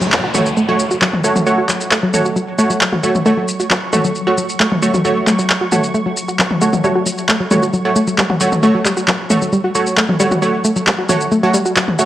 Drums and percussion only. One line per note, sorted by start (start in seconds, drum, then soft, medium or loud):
0.01 shaker soft
0.12 clap loud
0.12 shaker soft
0.35 mid tom medium
0.35 shaker medium
0.46 shaker soft
0.57 shaker soft
0.79 shaker medium
0.91 shaker soft
1.02 clap loud
1.02 shaker soft
1.13 mid tom medium
1.24 shaker medium
1.36 mid tom medium
1.36 shaker soft
1.47 shaker soft
1.69 clap medium
1.69 shaker medium
1.81 shaker soft
1.91 clap loud
1.91 shaker soft
2.14 mid tom medium
2.14 shaker medium
2.25 shaker soft
2.36 shaker soft
2.59 shaker medium
2.70 shaker soft
2.81 clap loud
2.81 shaker soft
2.93 mid tom medium
3.03 shaker medium
3.15 mid tom medium
3.15 shaker soft
3.26 shaker soft
3.48 shaker medium
3.60 shaker soft
3.71 clap loud
3.71 shaker soft
3.93 mid tom medium
3.93 shaker medium
4.04 shaker soft
4.15 shaker soft
4.38 shaker medium
4.49 shaker soft
4.60 clap loud
4.60 shaker soft
4.72 mid tom medium
4.82 shaker medium
4.94 mid tom medium
4.94 shaker soft
5.05 shaker soft
5.27 clap medium
5.27 shaker medium
5.39 shaker soft
5.50 clap loud
5.50 shaker soft
5.72 mid tom medium
5.72 shaker medium
5.84 shaker soft
5.94 shaker soft
6.17 shaker medium
6.28 shaker soft
6.39 clap loud
6.39 shaker soft
6.51 mid tom medium
6.61 shaker medium
6.73 mid tom medium
6.73 shaker soft
6.84 shaker soft
7.06 shaker medium
7.18 shaker soft
7.29 clap loud
7.29 shaker soft
7.51 mid tom medium
7.51 shaker medium
7.63 shaker soft
7.73 shaker soft
7.96 shaker medium
8.07 shaker soft
8.18 clap loud
8.18 shaker soft
8.30 mid tom medium
8.41 shaker medium
8.52 mid tom medium
8.52 shaker soft
8.63 shaker soft
8.85 clap medium
8.85 shaker medium
8.97 shaker soft
9.08 clap loud
9.08 shaker soft
9.30 mid tom medium
9.30 shaker medium
9.42 shaker soft
9.53 shaker soft
9.75 shaker medium
9.87 shaker soft
9.97 clap loud
9.97 shaker soft
10.09 mid tom medium
10.20 shaker medium
10.31 mid tom medium
10.31 shaker soft
10.42 shaker soft
10.64 shaker medium
10.76 shaker soft
10.87 clap loud
10.87 shaker soft
11.09 mid tom medium
11.09 shaker medium
11.21 shaker soft
11.32 shaker soft
11.54 shaker medium
11.66 shaker soft
11.76 clap loud
11.76 shaker soft
11.88 mid tom medium
11.99 shaker medium